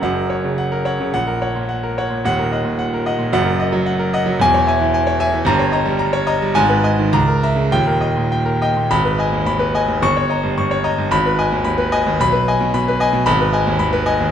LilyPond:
<<
  \new Staff \with { instrumentName = "Grand piano" } { \time 2/4 \key fis \major \tempo 4 = 110 << { fis''8 r4. | fis''8 r4. | fis''8 r4. | fis''8 r4. |
\key gis \minor gis''8 r4. | ais''8 r4. | gis''8 r8 ais''8 r8 | g''8 r4. |
b''8 r4. | cis'''8 r4. | b''8 r4. | b''8 r4. |
\key aes \dorian ces'''8 r4. | } \\ { r16 ais'16 <cis'' fis''>16 cis16 fis''16 ais'16 <cis'' fis''>16 cis16 | r16 ais'16 <cis'' fis''>16 ais,16 fis''16 ais'16 <cis'' fis''>16 ais,16 | r16 ais'16 <dis'' fis''>16 ais,16 fis''16 ais'16 <dis'' fis''>16 ais,16 | r16 ais'16 <dis'' fis''>16 fis16 fis''16 ais'16 <dis'' fis''>16 fis16 |
r16 cis''16 <e'' gis''>16 e16 gis''16 cis''16 <e'' gis''>16 e16 | r16 cis''16 <dis'' ais''>16 g16 ais''16 cis''16 <dis'' ais''>16 g16 | r16 b'16 <dis'' gis''>16 dis16 r16 ais'16 <e'' ais''>16 cis16 | r16 ais'16 <dis'' g''>16 ais,16 g''16 ais'16 <dis'' g''>16 ais,16 |
r16 b'16 <dis'' gis''>16 dis,16 b''16 b'16 <dis'' gis''>16 dis,16 | r16 cis''16 <dis'' ais''>16 g,16 cis'''16 cis''16 <dis'' ais''>16 g,16 | r16 b'16 <dis'' gis''>16 dis,16 b''16 b'16 <dis'' gis''>16 dis,16 | r16 b'16 <dis'' gis''>16 b,16 b''16 b'16 <dis'' gis''>16 b,16 |
r16 ces''16 <ees'' aes''>16 ees,16 ces'''16 ces''16 <ees'' aes''>16 ees,16 | } >> }
  \new Staff \with { instrumentName = "Grand piano" } { \clef bass \time 2/4 \key fis \major <fis,, fis,>2 | ais,,2 | <dis,, dis,>2 | <fis,, fis,>2 |
\key gis \minor <e,, e,>2 | <g,, g,>2 | <gis,, gis,>4 cis,4 | <dis,, dis,>2 |
gis,,4 dis,8 r8 | g,,4 g,8 r8 | gis,,4 dis,8 r8 | b,,4 b,8 r8 |
\key aes \dorian aes,,4 ees,8 r8 | }
>>